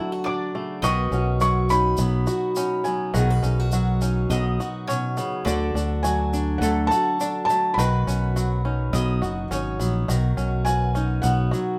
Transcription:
0.00 0.25 D3 medium
0.00 0.83 D3 medium
0.00 1.40 F#3 medium
0.00 0.54 A3 medium
0.00 0.25 D4 medium
0.00 0.81 D4 medium
0.00 0.12 E4 medium
0.00 1.13 F#4 medium
0.00 0.80 A4 medium
0.00 0.22 A5 medium
0.12 0.83 F#4 medium
0.24 0.54 D3 medium
0.24 0.84 D4 medium
0.24 0.82 D5 medium
0.24 0.85 D6 medium
0.55 0.83 C#3 medium
0.55 0.89 A3 medium
0.82 1.10 B1 medium
0.82 3.11 B2 medium
0.82 3.12 D#3 medium
0.82 1.41 F#4 medium
0.82 3.11 B4 medium
0.82 4.25 D#5 loud
0.82 1.40 C#6 loud
0.82 shaker loud
1.11 1.94 B1 medium
1.11 1.69 C#4 medium
1.11 2.27 F#4 medium
1.11 shaker medium
1.41 1.98 F#3 medium
1.41 1.98 F#4 medium
1.41 1.71 C#6 loud
1.41 shaker medium
1.70 2.56 C#4 medium
1.70 2.57 D#4 medium
1.70 2.89 B5 loud
1.70 shaker medium
1.97 2.26 B1 loud
1.97 2.86 F#3 medium
1.97 2.84 B3 medium
1.97 shaker loud
2.27 3.14 F#4 medium
2.27 3.19 F#4 medium
2.27 shaker medium
2.56 3.41 C#4 medium
2.56 3.12 D#4 medium
2.56 shaker loud
2.84 3.73 F#3 medium
2.84 4.30 B3 medium
2.84 3.15 G#5 medium
2.84 shaker medium
3.14 3.42 B1 medium
3.14 4.88 B2 medium
3.14 5.45 D#3 medium
3.14 3.72 F#4 medium
3.14 3.30 G#4 medium
3.14 4.84 F#5 medium
3.14 shaker loud
3.30 5.46 B4 medium
3.43 4.26 B1 medium
3.43 4.01 C#4 medium
3.43 3.60 D#4 medium
3.43 shaker medium
3.60 4.60 F#4 soft
3.72 4.32 F#3 medium
3.72 4.60 F#4 medium
3.72 shaker loud
4.02 4.87 C#4 medium
4.02 5.43 D#4 medium
4.02 shaker medium
4.30 4.57 B1 loud
4.30 6.04 F#3 medium
4.30 5.16 B3 medium
4.30 4.87 D#5 medium
4.30 shaker loud
4.60 5.47 F#4 medium
4.60 5.77 F#4 medium
4.60 shaker medium
4.88 5.17 B2 medium
4.88 5.52 C#4 medium
4.88 5.44 C#5 medium
4.88 shaker loud
5.17 5.46 C#3 medium
5.17 5.47 B3 medium
5.17 shaker medium
5.45 5.73 D2 medium
5.45 6.62 D3 medium
5.45 7.74 D3 medium
5.45 6.04 F#4 medium
5.45 7.74 A4 medium
5.45 6.57 D5 loud
5.45 shaker loud
5.74 6.57 D2 medium
5.74 6.32 D4 medium
5.74 6.93 F#4 medium
5.74 shaker medium
6.03 6.63 F#3 medium
6.03 6.91 F#4 medium
6.03 6.63 G#5 medium
6.03 shaker loud
6.33 7.20 D4 medium
6.33 7.19 D4 medium
6.33 shaker medium
6.58 6.89 D2 loud
6.58 7.81 A4 medium
6.58 6.90 F#5 medium
6.63 7.49 F#3 medium
6.63 7.49 A3 medium
6.63 shaker loud
6.87 7.44 A5 loud
6.91 7.79 F#4 medium
6.91 8.06 F#4 medium
6.91 shaker medium
7.20 7.74 D4 medium
7.20 7.84 D4 medium
7.20 shaker loud
7.45 7.76 A5 loud
7.50 8.35 F#3 medium
7.50 7.78 A3 medium
7.50 shaker medium
7.74 8.05 B1 medium
7.74 9.45 B5 medium
7.78 10.06 B2 medium
7.78 10.07 D#3 medium
7.78 8.35 F#4 medium
7.78 8.93 B4 medium
7.78 10.06 B4 medium
7.78 shaker loud
8.07 8.89 B1 medium
8.07 8.64 C#4 medium
8.07 9.21 F#4 medium
8.07 shaker medium
8.36 8.91 F#3 medium
8.36 9.21 F#4 medium
8.36 shaker medium
8.65 9.50 C#4 medium
8.65 9.51 D#4 medium
8.93 9.20 B1 loud
8.93 9.79 F#3 medium
8.93 9.78 B3 medium
8.93 9.52 D#5 medium
8.93 shaker loud
9.22 9.48 F#1 medium
9.22 10.08 F#4 medium
9.22 10.05 F#4 medium
9.22 shaker medium
9.51 9.77 G#1 medium
9.51 10.14 C#4 medium
9.51 10.06 D#4 medium
9.51 10.05 C#5 medium
9.51 shaker medium
9.79 10.06 A#1 medium
9.79 11.52 F#3 medium
9.79 10.14 B3 medium
9.79 shaker medium
10.08 10.36 B1 medium
10.08 11.79 B2 medium
10.08 11.79 D#3 medium
10.08 10.66 F#4 medium
10.08 shaker loud
10.37 11.20 B1 medium
10.37 10.94 C#4 medium
10.37 11.25 F#4 medium
10.37 shaker medium
10.65 11.23 F#4 medium
10.65 11.79 B4 medium
10.65 11.25 G#5 loud
10.65 shaker medium
10.95 11.79 C#4 medium
10.95 11.79 D#4 medium
10.95 shaker medium
11.22 11.51 B1 loud
11.22 11.79 B3 medium
11.22 11.79 F#4 medium
11.22 11.79 F#5 medium
11.22 shaker loud
11.51 11.79 F#3 medium
11.51 11.79 F#4 medium
11.51 shaker medium

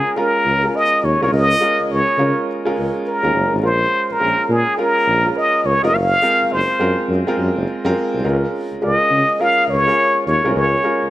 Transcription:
0.00 0.16 G#3 medium
0.00 0.17 C#4 medium
0.00 0.17 F4 medium
0.00 0.15 G#4 medium
0.00 0.17 A#4 medium
0.16 0.46 G#3 medium
0.16 0.46 C#4 medium
0.16 0.46 F4 medium
0.16 0.46 A#4 medium
0.16 0.78 A#4 loud
0.46 0.66 C#2 medium
0.64 1.00 G#3 medium
0.64 1.00 C#4 medium
0.64 1.00 F4 medium
0.64 1.01 A#4 medium
0.76 1.06 D#5 loud
1.03 1.16 D#2 medium
1.03 1.22 C#5 medium
1.21 1.29 C2 medium
1.21 1.51 G#3 medium
1.21 1.51 C#4 medium
1.21 1.51 F4 medium
1.21 1.51 A#4 medium
1.21 1.32 C#5 loud
1.32 1.53 C#2 loud
1.32 1.93 D#5 loud
1.61 2.03 G#3 medium
1.61 2.03 C#4 medium
1.61 2.03 F4 medium
1.61 2.03 A#4 medium
1.79 1.84 C#2 soft
1.90 2.03 C#2 medium
1.90 2.48 C#5 medium
2.18 2.32 C#3 loud
2.18 2.48 G#3 medium
2.18 2.48 C#4 medium
2.18 2.48 F4 medium
2.18 2.48 A#4 medium
2.65 2.70 C#2 soft
2.65 3.02 G#3 medium
2.65 3.02 C#4 medium
2.65 3.02 F4 medium
2.65 3.02 A#4 medium
2.77 2.90 C#2 medium
3.07 3.60 A#4 medium
3.23 3.31 D#2 medium
3.23 3.52 G#3 medium
3.23 3.53 C#4 medium
3.23 3.53 F4 medium
3.23 3.53 A#4 medium
3.34 3.47 F#1 medium
3.53 3.60 G#1 loud
3.62 3.84 A#1 loud
3.62 4.04 G#3 medium
3.62 4.05 C#4 medium
3.62 4.05 F4 medium
3.62 4.05 A#4 medium
3.62 4.14 C5 loud
4.10 4.14 A#1 soft
4.10 4.53 A#4 medium
4.20 4.34 A#1 medium
4.20 4.62 G#3 medium
4.20 4.62 C#4 medium
4.20 4.62 F4 medium
4.20 4.63 A#4 medium
4.50 4.63 A#2 medium
4.50 4.81 G#4 medium
4.78 5.07 G#3 medium
4.78 5.07 C#4 medium
4.78 5.08 F4 medium
4.78 5.08 A#4 medium
4.78 5.39 A#4 medium
5.07 5.28 A#1 medium
5.25 5.61 G#3 medium
5.25 5.62 C#4 medium
5.25 5.62 F4 medium
5.25 5.62 A#4 medium
5.37 5.67 D#5 loud
5.65 5.78 C#2 medium
5.65 5.84 C#5 medium
5.83 5.91 F1 medium
5.83 5.93 G#3 medium
5.83 5.93 C#4 medium
5.83 5.94 F4 medium
5.83 5.94 A#4 medium
5.83 5.96 D#5 loud
5.94 6.14 F#1 loud
5.94 6.54 F5 loud
6.22 6.64 G#3 medium
6.22 6.64 C4 medium
6.22 6.64 F4 medium
6.22 6.65 A#4 medium
6.41 6.45 F#1 soft
6.51 6.65 F#1 medium
6.51 7.10 C5 loud
6.79 6.93 F#2 medium
6.79 7.09 G#3 medium
6.79 7.09 C4 medium
6.79 7.10 F4 medium
6.79 7.10 A#4 medium
7.09 7.22 F#2 medium
7.27 7.63 G#3 medium
7.27 7.63 C4 medium
7.27 7.64 F4 medium
7.27 7.64 A#4 medium
7.38 7.51 F#2 loud
7.57 7.64 F#1 medium
7.85 7.93 F#2 medium
7.85 8.14 G#3 loud
7.85 8.14 C4 medium
7.85 8.14 F4 medium
7.85 8.15 A#4 loud
8.14 8.21 C2 medium
8.24 8.45 C#2 loud
8.24 8.66 G#3 medium
8.24 8.66 C#4 medium
8.24 8.66 F4 medium
8.24 8.67 A#4 medium
8.72 8.76 C#2 soft
8.82 8.95 C#2 medium
8.82 9.24 G#3 medium
8.82 9.24 C#4 medium
8.82 9.24 F4 medium
8.82 9.24 A#4 medium
8.82 9.43 D#5 loud
9.11 9.24 C#3 medium
9.39 9.69 G#3 medium
9.39 9.69 C#4 medium
9.39 9.69 F4 medium
9.39 9.70 A#4 medium
9.39 9.71 F5 loud
9.69 9.89 C#2 medium
9.69 10.26 C#5 loud
9.87 10.23 G#3 medium
9.87 10.23 C#4 medium
9.87 10.23 F4 medium
9.87 10.23 A#4 medium
10.26 10.40 D#2 medium
10.26 10.53 C#5 medium
10.44 10.52 C2 medium
10.44 10.74 G#3 medium
10.44 10.74 C#4 medium
10.44 10.74 F4 medium
10.44 10.74 A#4 medium
10.55 10.76 C#2 loud
10.55 11.09 C#5 medium
10.84 11.10 G#3 medium
10.84 11.10 C#4 medium
10.84 11.10 F4 medium
10.84 11.10 A#4 medium
11.03 11.07 C#2 soft

